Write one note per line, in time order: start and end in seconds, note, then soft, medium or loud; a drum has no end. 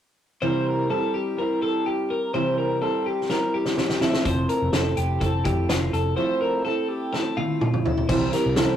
0.42 0.90 C3 medium
0.42 0.95 E3 medium
0.42 0.88 G3 medium
0.42 0.90 C4 medium
0.42 0.90 E4 medium
0.42 0.91 A#4 medium
0.42 0.67 C5 medium
0.67 0.90 A#4 medium
0.90 1.36 G3 medium
0.90 1.39 C4 medium
0.90 1.40 E4 medium
0.90 1.14 A4 medium
0.90 1.39 A#4 medium
1.14 1.38 G4 medium
1.37 2.33 G3 medium
1.37 2.35 C4 medium
1.37 2.35 E4 medium
1.37 1.62 A#4 medium
1.42 2.34 A#4 medium
1.62 1.86 A4 medium
1.86 2.10 G4 medium
2.10 2.34 A#4 medium
2.33 2.82 C3 medium
2.33 2.87 E3 medium
2.33 2.80 G3 medium
2.33 2.82 C4 medium
2.33 2.83 E4 medium
2.33 2.82 A#4 medium
2.33 2.57 C5 medium
2.58 2.81 A#4 medium
2.82 3.28 G3 medium
2.82 3.30 C4 medium
2.82 3.30 E4 medium
2.82 3.06 A4 medium
2.82 3.30 A#4 medium
3.06 3.30 G4 medium
3.29 4.01 G3 medium
3.29 4.02 C4 medium
3.29 4.01 E4 medium
3.29 3.54 A#4 medium
3.29 4.01 A#4 medium
3.29 snare soft
3.54 3.99 G4 medium
3.65 snare medium
3.78 snare medium
3.90 snare medium
4.01 4.74 F3 medium
4.01 4.73 A3 medium
4.01 4.74 C4 medium
4.01 4.75 E4 medium
4.01 4.25 E4 medium
4.01 4.74 A4 medium
4.01 snare medium
4.14 snare medium
4.25 4.46 F1 loud
4.25 4.49 C5 medium
4.25 kick medium
4.25 closed hi-hat medium
4.49 4.73 A#4 medium
4.49 closed hi-hat medium
4.62 4.72 F1 medium
4.73 4.93 F1 medium
4.73 5.20 A3 medium
4.73 5.22 C4 medium
4.73 5.23 E4 medium
4.73 4.97 A4 medium
4.73 5.23 A4 medium
4.73 snare loud
4.73 closed hi-hat medium
4.97 5.17 F1 medium
4.97 5.21 G4 medium
4.97 closed hi-hat medium
5.21 5.41 F1 medium
5.21 6.16 A3 medium
5.21 6.17 C4 medium
5.21 6.18 E4 medium
5.21 5.45 A4 medium
5.21 kick medium
5.21 closed hi-hat medium
5.26 6.17 A4 medium
5.45 5.65 F2 medium
5.45 5.69 G4 medium
5.45 kick medium
5.45 closed hi-hat medium
5.69 5.89 F1 medium
5.69 5.93 F4 medium
5.69 snare loud
5.69 closed hi-hat medium
5.93 6.13 F1 medium
5.93 6.16 A4 medium
5.93 closed hi-hat medium
6.17 6.65 F3 medium
6.17 6.65 A3 medium
6.17 6.66 C4 medium
6.17 6.67 E4 medium
6.17 6.66 A4 medium
6.17 6.41 C5 medium
6.41 6.64 A#4 medium
6.65 7.11 A3 medium
6.65 7.14 C4 medium
6.65 7.15 E4 medium
6.65 6.89 A4 medium
6.65 7.15 A4 medium
6.89 7.13 G4 medium
7.13 8.09 A3 medium
7.13 8.10 C4 medium
7.13 8.11 E4 medium
7.13 7.37 A4 medium
7.13 snare soft
7.18 8.11 A4 medium
7.37 7.85 F4 medium
7.37 high tom medium
7.61 mid tom medium
7.74 mid tom medium
7.85 8.09 E4 medium
7.85 floor tom medium
7.98 floor tom medium
8.09 8.29 C2 medium
8.09 8.34 C3 medium
8.09 8.34 E3 medium
8.09 8.34 G3 medium
8.09 8.33 C4 medium
8.09 8.33 E4 medium
8.09 8.32 A#4 medium
8.09 8.32 C5 medium
8.09 kick loud
8.09 crash medium
8.33 8.56 G3 soft
8.33 8.56 C4 soft
8.33 8.57 E4 soft
8.33 8.56 A#4 medium
8.33 8.57 A#4 soft
8.33 snare soft
8.33 closed hi-hat medium
8.46 8.65 C2 medium
8.56 8.77 C3 medium
8.56 8.77 E3 medium
8.56 8.77 G3 medium
8.56 8.77 C4 medium
8.56 8.77 E4 medium
8.56 8.77 A4 medium
8.56 8.77 A#4 medium
8.56 snare loud
8.56 closed hi-hat medium